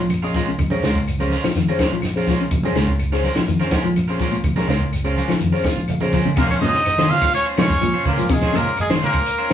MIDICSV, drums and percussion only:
0, 0, Header, 1, 3, 480
1, 0, Start_track
1, 0, Key_signature, -5, "minor"
1, 0, Tempo, 481928
1, 586, Time_signature, 4, 2, 24, 8
1, 9494, End_track
2, 0, Start_track
2, 0, Title_t, "Shekere"
2, 10, Note_on_c, 9, 82, 27
2, 109, Note_off_c, 9, 82, 0
2, 123, Note_on_c, 9, 82, 81
2, 222, Note_off_c, 9, 82, 0
2, 248, Note_on_c, 9, 82, 27
2, 348, Note_off_c, 9, 82, 0
2, 356, Note_on_c, 9, 82, 72
2, 456, Note_off_c, 9, 82, 0
2, 482, Note_on_c, 9, 82, 27
2, 582, Note_off_c, 9, 82, 0
2, 592, Note_on_c, 9, 82, 85
2, 691, Note_off_c, 9, 82, 0
2, 725, Note_on_c, 9, 82, 31
2, 824, Note_off_c, 9, 82, 0
2, 836, Note_on_c, 9, 82, 72
2, 936, Note_off_c, 9, 82, 0
2, 964, Note_on_c, 9, 82, 27
2, 1064, Note_off_c, 9, 82, 0
2, 1072, Note_on_c, 9, 82, 86
2, 1172, Note_off_c, 9, 82, 0
2, 1206, Note_on_c, 9, 82, 28
2, 1305, Note_off_c, 9, 82, 0
2, 1316, Note_on_c, 9, 82, 70
2, 1416, Note_off_c, 9, 82, 0
2, 1440, Note_on_c, 9, 82, 28
2, 1539, Note_off_c, 9, 82, 0
2, 1548, Note_on_c, 9, 82, 88
2, 1647, Note_off_c, 9, 82, 0
2, 1676, Note_on_c, 9, 82, 28
2, 1775, Note_off_c, 9, 82, 0
2, 1797, Note_on_c, 9, 82, 65
2, 1897, Note_off_c, 9, 82, 0
2, 1917, Note_on_c, 9, 82, 26
2, 2017, Note_off_c, 9, 82, 0
2, 2031, Note_on_c, 9, 82, 74
2, 2131, Note_off_c, 9, 82, 0
2, 2157, Note_on_c, 9, 82, 29
2, 2256, Note_off_c, 9, 82, 0
2, 2270, Note_on_c, 9, 82, 72
2, 2369, Note_off_c, 9, 82, 0
2, 2395, Note_on_c, 9, 82, 26
2, 2495, Note_off_c, 9, 82, 0
2, 2510, Note_on_c, 9, 82, 87
2, 2609, Note_off_c, 9, 82, 0
2, 2628, Note_on_c, 9, 82, 27
2, 2727, Note_off_c, 9, 82, 0
2, 2752, Note_on_c, 9, 82, 69
2, 2851, Note_off_c, 9, 82, 0
2, 2880, Note_on_c, 9, 82, 29
2, 2979, Note_off_c, 9, 82, 0
2, 3001, Note_on_c, 9, 82, 82
2, 3100, Note_off_c, 9, 82, 0
2, 3116, Note_on_c, 9, 82, 25
2, 3215, Note_off_c, 9, 82, 0
2, 3232, Note_on_c, 9, 82, 70
2, 3332, Note_off_c, 9, 82, 0
2, 3463, Note_on_c, 9, 82, 88
2, 3563, Note_off_c, 9, 82, 0
2, 3594, Note_on_c, 9, 82, 28
2, 3693, Note_off_c, 9, 82, 0
2, 3710, Note_on_c, 9, 82, 72
2, 3810, Note_off_c, 9, 82, 0
2, 3836, Note_on_c, 9, 82, 25
2, 3935, Note_off_c, 9, 82, 0
2, 3957, Note_on_c, 9, 82, 80
2, 4057, Note_off_c, 9, 82, 0
2, 4087, Note_on_c, 9, 82, 28
2, 4187, Note_off_c, 9, 82, 0
2, 4195, Note_on_c, 9, 82, 74
2, 4295, Note_off_c, 9, 82, 0
2, 4318, Note_on_c, 9, 82, 27
2, 4418, Note_off_c, 9, 82, 0
2, 4426, Note_on_c, 9, 82, 86
2, 4526, Note_off_c, 9, 82, 0
2, 4551, Note_on_c, 9, 82, 28
2, 4651, Note_off_c, 9, 82, 0
2, 4676, Note_on_c, 9, 82, 71
2, 4775, Note_off_c, 9, 82, 0
2, 4798, Note_on_c, 9, 82, 27
2, 4897, Note_off_c, 9, 82, 0
2, 4912, Note_on_c, 9, 82, 84
2, 5011, Note_off_c, 9, 82, 0
2, 5037, Note_on_c, 9, 82, 27
2, 5136, Note_off_c, 9, 82, 0
2, 5156, Note_on_c, 9, 82, 72
2, 5255, Note_off_c, 9, 82, 0
2, 5274, Note_on_c, 9, 82, 28
2, 5373, Note_off_c, 9, 82, 0
2, 5388, Note_on_c, 9, 82, 87
2, 5488, Note_off_c, 9, 82, 0
2, 5520, Note_on_c, 9, 82, 27
2, 5619, Note_off_c, 9, 82, 0
2, 5640, Note_on_c, 9, 82, 70
2, 5740, Note_off_c, 9, 82, 0
2, 5753, Note_on_c, 9, 82, 25
2, 5852, Note_off_c, 9, 82, 0
2, 5863, Note_on_c, 9, 82, 84
2, 5962, Note_off_c, 9, 82, 0
2, 5994, Note_on_c, 9, 82, 25
2, 6093, Note_off_c, 9, 82, 0
2, 6111, Note_on_c, 9, 82, 68
2, 6211, Note_off_c, 9, 82, 0
2, 6238, Note_on_c, 9, 82, 27
2, 6337, Note_off_c, 9, 82, 0
2, 6349, Note_on_c, 9, 82, 68
2, 6449, Note_off_c, 9, 82, 0
2, 6591, Note_on_c, 9, 82, 88
2, 6691, Note_off_c, 9, 82, 0
2, 6717, Note_on_c, 9, 82, 30
2, 6816, Note_off_c, 9, 82, 0
2, 6832, Note_on_c, 9, 82, 84
2, 6932, Note_off_c, 9, 82, 0
2, 7077, Note_on_c, 9, 82, 34
2, 7177, Note_off_c, 9, 82, 0
2, 7188, Note_on_c, 9, 82, 72
2, 7288, Note_off_c, 9, 82, 0
2, 7311, Note_on_c, 9, 82, 71
2, 7411, Note_off_c, 9, 82, 0
2, 7562, Note_on_c, 9, 82, 31
2, 7661, Note_off_c, 9, 82, 0
2, 7679, Note_on_c, 9, 82, 83
2, 7779, Note_off_c, 9, 82, 0
2, 7796, Note_on_c, 9, 82, 85
2, 7895, Note_off_c, 9, 82, 0
2, 8036, Note_on_c, 9, 82, 30
2, 8136, Note_off_c, 9, 82, 0
2, 8146, Note_on_c, 9, 82, 71
2, 8246, Note_off_c, 9, 82, 0
2, 8264, Note_on_c, 9, 82, 71
2, 8364, Note_off_c, 9, 82, 0
2, 8511, Note_on_c, 9, 82, 94
2, 8611, Note_off_c, 9, 82, 0
2, 8629, Note_on_c, 9, 82, 28
2, 8729, Note_off_c, 9, 82, 0
2, 8750, Note_on_c, 9, 82, 93
2, 8850, Note_off_c, 9, 82, 0
2, 8997, Note_on_c, 9, 82, 31
2, 9096, Note_off_c, 9, 82, 0
2, 9109, Note_on_c, 9, 82, 72
2, 9209, Note_off_c, 9, 82, 0
2, 9224, Note_on_c, 9, 82, 74
2, 9323, Note_off_c, 9, 82, 0
2, 9494, End_track
3, 0, Start_track
3, 0, Title_t, "Drums"
3, 95, Note_on_c, 9, 42, 64
3, 98, Note_on_c, 9, 63, 82
3, 103, Note_on_c, 9, 75, 67
3, 194, Note_off_c, 9, 42, 0
3, 197, Note_off_c, 9, 63, 0
3, 202, Note_off_c, 9, 75, 0
3, 227, Note_on_c, 9, 42, 29
3, 327, Note_off_c, 9, 42, 0
3, 343, Note_on_c, 9, 42, 47
3, 344, Note_on_c, 9, 36, 59
3, 443, Note_off_c, 9, 36, 0
3, 443, Note_off_c, 9, 42, 0
3, 583, Note_on_c, 9, 64, 77
3, 585, Note_on_c, 9, 36, 81
3, 585, Note_on_c, 9, 42, 64
3, 588, Note_on_c, 9, 75, 64
3, 683, Note_off_c, 9, 64, 0
3, 685, Note_off_c, 9, 36, 0
3, 685, Note_off_c, 9, 42, 0
3, 687, Note_off_c, 9, 75, 0
3, 699, Note_on_c, 9, 63, 98
3, 708, Note_on_c, 9, 42, 31
3, 799, Note_off_c, 9, 63, 0
3, 807, Note_off_c, 9, 42, 0
3, 823, Note_on_c, 9, 42, 49
3, 831, Note_on_c, 9, 38, 69
3, 831, Note_on_c, 9, 64, 76
3, 923, Note_off_c, 9, 42, 0
3, 931, Note_off_c, 9, 38, 0
3, 931, Note_off_c, 9, 64, 0
3, 947, Note_on_c, 9, 36, 64
3, 1047, Note_off_c, 9, 36, 0
3, 1071, Note_on_c, 9, 42, 68
3, 1071, Note_on_c, 9, 75, 55
3, 1171, Note_off_c, 9, 42, 0
3, 1171, Note_off_c, 9, 75, 0
3, 1185, Note_on_c, 9, 63, 70
3, 1284, Note_off_c, 9, 63, 0
3, 1298, Note_on_c, 9, 63, 76
3, 1311, Note_on_c, 9, 46, 62
3, 1398, Note_off_c, 9, 63, 0
3, 1411, Note_off_c, 9, 46, 0
3, 1436, Note_on_c, 9, 38, 69
3, 1438, Note_on_c, 9, 75, 61
3, 1535, Note_off_c, 9, 38, 0
3, 1538, Note_off_c, 9, 75, 0
3, 1544, Note_on_c, 9, 42, 70
3, 1552, Note_on_c, 9, 38, 30
3, 1644, Note_off_c, 9, 42, 0
3, 1652, Note_off_c, 9, 38, 0
3, 1781, Note_on_c, 9, 63, 91
3, 1785, Note_on_c, 9, 36, 71
3, 1785, Note_on_c, 9, 42, 52
3, 1786, Note_on_c, 9, 75, 64
3, 1793, Note_on_c, 9, 38, 71
3, 1881, Note_off_c, 9, 63, 0
3, 1884, Note_off_c, 9, 36, 0
3, 1884, Note_off_c, 9, 42, 0
3, 1885, Note_off_c, 9, 75, 0
3, 1892, Note_off_c, 9, 38, 0
3, 2013, Note_on_c, 9, 75, 68
3, 2020, Note_on_c, 9, 42, 66
3, 2023, Note_on_c, 9, 63, 83
3, 2028, Note_on_c, 9, 38, 29
3, 2113, Note_off_c, 9, 75, 0
3, 2120, Note_off_c, 9, 42, 0
3, 2122, Note_off_c, 9, 63, 0
3, 2128, Note_off_c, 9, 38, 0
3, 2261, Note_on_c, 9, 63, 67
3, 2263, Note_on_c, 9, 42, 51
3, 2264, Note_on_c, 9, 36, 60
3, 2271, Note_on_c, 9, 38, 26
3, 2360, Note_off_c, 9, 63, 0
3, 2363, Note_off_c, 9, 42, 0
3, 2364, Note_off_c, 9, 36, 0
3, 2371, Note_off_c, 9, 38, 0
3, 2499, Note_on_c, 9, 42, 66
3, 2499, Note_on_c, 9, 75, 59
3, 2503, Note_on_c, 9, 36, 83
3, 2505, Note_on_c, 9, 64, 78
3, 2598, Note_off_c, 9, 42, 0
3, 2599, Note_off_c, 9, 75, 0
3, 2603, Note_off_c, 9, 36, 0
3, 2605, Note_off_c, 9, 64, 0
3, 2622, Note_on_c, 9, 63, 93
3, 2722, Note_off_c, 9, 63, 0
3, 2739, Note_on_c, 9, 42, 52
3, 2745, Note_on_c, 9, 64, 75
3, 2747, Note_on_c, 9, 38, 67
3, 2839, Note_off_c, 9, 42, 0
3, 2844, Note_off_c, 9, 64, 0
3, 2847, Note_off_c, 9, 38, 0
3, 2855, Note_on_c, 9, 42, 31
3, 2859, Note_on_c, 9, 36, 68
3, 2955, Note_off_c, 9, 42, 0
3, 2959, Note_off_c, 9, 36, 0
3, 2980, Note_on_c, 9, 42, 69
3, 2983, Note_on_c, 9, 75, 61
3, 3079, Note_off_c, 9, 42, 0
3, 3083, Note_off_c, 9, 75, 0
3, 3108, Note_on_c, 9, 38, 28
3, 3208, Note_off_c, 9, 38, 0
3, 3218, Note_on_c, 9, 46, 60
3, 3224, Note_on_c, 9, 63, 82
3, 3317, Note_off_c, 9, 46, 0
3, 3324, Note_off_c, 9, 63, 0
3, 3344, Note_on_c, 9, 38, 69
3, 3344, Note_on_c, 9, 75, 61
3, 3443, Note_off_c, 9, 38, 0
3, 3444, Note_off_c, 9, 75, 0
3, 3451, Note_on_c, 9, 42, 67
3, 3551, Note_off_c, 9, 42, 0
3, 3580, Note_on_c, 9, 42, 28
3, 3588, Note_on_c, 9, 38, 26
3, 3680, Note_off_c, 9, 42, 0
3, 3688, Note_off_c, 9, 38, 0
3, 3695, Note_on_c, 9, 42, 50
3, 3699, Note_on_c, 9, 36, 76
3, 3703, Note_on_c, 9, 38, 71
3, 3707, Note_on_c, 9, 63, 95
3, 3709, Note_on_c, 9, 75, 62
3, 3794, Note_off_c, 9, 42, 0
3, 3799, Note_off_c, 9, 36, 0
3, 3802, Note_off_c, 9, 38, 0
3, 3806, Note_off_c, 9, 63, 0
3, 3809, Note_off_c, 9, 75, 0
3, 3944, Note_on_c, 9, 42, 65
3, 3947, Note_on_c, 9, 75, 61
3, 3950, Note_on_c, 9, 63, 77
3, 4044, Note_off_c, 9, 42, 0
3, 4047, Note_off_c, 9, 75, 0
3, 4050, Note_off_c, 9, 63, 0
3, 4071, Note_on_c, 9, 42, 28
3, 4170, Note_off_c, 9, 42, 0
3, 4180, Note_on_c, 9, 36, 59
3, 4181, Note_on_c, 9, 42, 45
3, 4193, Note_on_c, 9, 63, 68
3, 4280, Note_off_c, 9, 36, 0
3, 4281, Note_off_c, 9, 42, 0
3, 4293, Note_off_c, 9, 63, 0
3, 4421, Note_on_c, 9, 36, 84
3, 4423, Note_on_c, 9, 64, 74
3, 4424, Note_on_c, 9, 42, 60
3, 4426, Note_on_c, 9, 75, 65
3, 4521, Note_off_c, 9, 36, 0
3, 4523, Note_off_c, 9, 64, 0
3, 4524, Note_off_c, 9, 42, 0
3, 4526, Note_off_c, 9, 75, 0
3, 4545, Note_on_c, 9, 63, 90
3, 4555, Note_on_c, 9, 42, 30
3, 4563, Note_on_c, 9, 38, 26
3, 4644, Note_off_c, 9, 63, 0
3, 4655, Note_off_c, 9, 42, 0
3, 4663, Note_off_c, 9, 38, 0
3, 4665, Note_on_c, 9, 64, 71
3, 4675, Note_on_c, 9, 42, 45
3, 4683, Note_on_c, 9, 38, 62
3, 4764, Note_off_c, 9, 64, 0
3, 4775, Note_off_c, 9, 42, 0
3, 4782, Note_off_c, 9, 38, 0
3, 4786, Note_on_c, 9, 36, 64
3, 4886, Note_off_c, 9, 36, 0
3, 4908, Note_on_c, 9, 75, 59
3, 4909, Note_on_c, 9, 42, 65
3, 5008, Note_off_c, 9, 42, 0
3, 5008, Note_off_c, 9, 75, 0
3, 5154, Note_on_c, 9, 63, 75
3, 5159, Note_on_c, 9, 42, 46
3, 5253, Note_off_c, 9, 63, 0
3, 5259, Note_off_c, 9, 42, 0
3, 5274, Note_on_c, 9, 75, 63
3, 5278, Note_on_c, 9, 38, 66
3, 5374, Note_off_c, 9, 75, 0
3, 5378, Note_off_c, 9, 38, 0
3, 5383, Note_on_c, 9, 42, 74
3, 5482, Note_off_c, 9, 42, 0
3, 5615, Note_on_c, 9, 75, 62
3, 5620, Note_on_c, 9, 42, 52
3, 5622, Note_on_c, 9, 36, 70
3, 5622, Note_on_c, 9, 63, 93
3, 5628, Note_on_c, 9, 38, 70
3, 5715, Note_off_c, 9, 75, 0
3, 5720, Note_off_c, 9, 42, 0
3, 5721, Note_off_c, 9, 63, 0
3, 5722, Note_off_c, 9, 36, 0
3, 5728, Note_off_c, 9, 38, 0
3, 5750, Note_on_c, 9, 63, 68
3, 5849, Note_off_c, 9, 63, 0
3, 5855, Note_on_c, 9, 75, 62
3, 5860, Note_on_c, 9, 42, 73
3, 5871, Note_on_c, 9, 64, 76
3, 5955, Note_off_c, 9, 75, 0
3, 5959, Note_off_c, 9, 42, 0
3, 5970, Note_off_c, 9, 64, 0
3, 5981, Note_on_c, 9, 64, 86
3, 6080, Note_off_c, 9, 64, 0
3, 6104, Note_on_c, 9, 36, 60
3, 6107, Note_on_c, 9, 64, 83
3, 6109, Note_on_c, 9, 42, 49
3, 6204, Note_off_c, 9, 36, 0
3, 6207, Note_off_c, 9, 64, 0
3, 6208, Note_off_c, 9, 42, 0
3, 6232, Note_on_c, 9, 64, 93
3, 6332, Note_off_c, 9, 64, 0
3, 6334, Note_on_c, 9, 75, 61
3, 6339, Note_on_c, 9, 49, 84
3, 6345, Note_on_c, 9, 36, 100
3, 6433, Note_off_c, 9, 75, 0
3, 6439, Note_off_c, 9, 49, 0
3, 6444, Note_off_c, 9, 36, 0
3, 6466, Note_on_c, 9, 36, 63
3, 6566, Note_off_c, 9, 36, 0
3, 6581, Note_on_c, 9, 42, 50
3, 6593, Note_on_c, 9, 63, 91
3, 6680, Note_off_c, 9, 42, 0
3, 6693, Note_off_c, 9, 63, 0
3, 6707, Note_on_c, 9, 42, 49
3, 6715, Note_on_c, 9, 38, 27
3, 6807, Note_off_c, 9, 42, 0
3, 6815, Note_off_c, 9, 38, 0
3, 6824, Note_on_c, 9, 75, 64
3, 6830, Note_on_c, 9, 42, 72
3, 6838, Note_on_c, 9, 38, 30
3, 6923, Note_off_c, 9, 75, 0
3, 6930, Note_off_c, 9, 42, 0
3, 6938, Note_off_c, 9, 38, 0
3, 6955, Note_on_c, 9, 63, 89
3, 6958, Note_on_c, 9, 38, 68
3, 7055, Note_off_c, 9, 63, 0
3, 7058, Note_off_c, 9, 38, 0
3, 7068, Note_on_c, 9, 46, 62
3, 7076, Note_on_c, 9, 64, 79
3, 7167, Note_off_c, 9, 46, 0
3, 7176, Note_off_c, 9, 64, 0
3, 7189, Note_on_c, 9, 36, 72
3, 7191, Note_on_c, 9, 42, 52
3, 7191, Note_on_c, 9, 75, 62
3, 7199, Note_on_c, 9, 38, 29
3, 7288, Note_off_c, 9, 36, 0
3, 7291, Note_off_c, 9, 42, 0
3, 7291, Note_off_c, 9, 75, 0
3, 7298, Note_off_c, 9, 38, 0
3, 7302, Note_on_c, 9, 42, 70
3, 7402, Note_off_c, 9, 42, 0
3, 7542, Note_on_c, 9, 42, 54
3, 7547, Note_on_c, 9, 75, 65
3, 7550, Note_on_c, 9, 38, 73
3, 7552, Note_on_c, 9, 63, 95
3, 7642, Note_off_c, 9, 42, 0
3, 7647, Note_off_c, 9, 75, 0
3, 7650, Note_off_c, 9, 38, 0
3, 7651, Note_off_c, 9, 63, 0
3, 7666, Note_on_c, 9, 36, 68
3, 7766, Note_off_c, 9, 36, 0
3, 7784, Note_on_c, 9, 42, 70
3, 7789, Note_on_c, 9, 75, 62
3, 7793, Note_on_c, 9, 63, 91
3, 7884, Note_off_c, 9, 42, 0
3, 7889, Note_off_c, 9, 75, 0
3, 7892, Note_off_c, 9, 63, 0
3, 8017, Note_on_c, 9, 42, 53
3, 8022, Note_on_c, 9, 36, 65
3, 8024, Note_on_c, 9, 63, 68
3, 8024, Note_on_c, 9, 64, 83
3, 8117, Note_off_c, 9, 42, 0
3, 8122, Note_off_c, 9, 36, 0
3, 8124, Note_off_c, 9, 63, 0
3, 8124, Note_off_c, 9, 64, 0
3, 8139, Note_on_c, 9, 42, 57
3, 8239, Note_off_c, 9, 42, 0
3, 8255, Note_on_c, 9, 42, 70
3, 8262, Note_on_c, 9, 36, 95
3, 8263, Note_on_c, 9, 38, 29
3, 8270, Note_on_c, 9, 75, 62
3, 8354, Note_off_c, 9, 42, 0
3, 8362, Note_off_c, 9, 36, 0
3, 8362, Note_off_c, 9, 38, 0
3, 8370, Note_off_c, 9, 75, 0
3, 8382, Note_on_c, 9, 36, 66
3, 8384, Note_on_c, 9, 38, 30
3, 8482, Note_off_c, 9, 36, 0
3, 8483, Note_off_c, 9, 38, 0
3, 8486, Note_on_c, 9, 42, 48
3, 8505, Note_on_c, 9, 63, 92
3, 8586, Note_off_c, 9, 42, 0
3, 8604, Note_off_c, 9, 63, 0
3, 8735, Note_on_c, 9, 42, 68
3, 8739, Note_on_c, 9, 75, 69
3, 8835, Note_off_c, 9, 42, 0
3, 8838, Note_off_c, 9, 75, 0
3, 8866, Note_on_c, 9, 38, 69
3, 8873, Note_on_c, 9, 63, 89
3, 8966, Note_off_c, 9, 38, 0
3, 8972, Note_off_c, 9, 63, 0
3, 8978, Note_on_c, 9, 46, 62
3, 9001, Note_on_c, 9, 64, 78
3, 9078, Note_off_c, 9, 46, 0
3, 9098, Note_on_c, 9, 75, 66
3, 9101, Note_off_c, 9, 64, 0
3, 9102, Note_on_c, 9, 36, 67
3, 9105, Note_on_c, 9, 42, 55
3, 9198, Note_off_c, 9, 75, 0
3, 9202, Note_off_c, 9, 36, 0
3, 9204, Note_off_c, 9, 42, 0
3, 9222, Note_on_c, 9, 42, 78
3, 9322, Note_off_c, 9, 42, 0
3, 9457, Note_on_c, 9, 42, 55
3, 9494, Note_off_c, 9, 42, 0
3, 9494, End_track
0, 0, End_of_file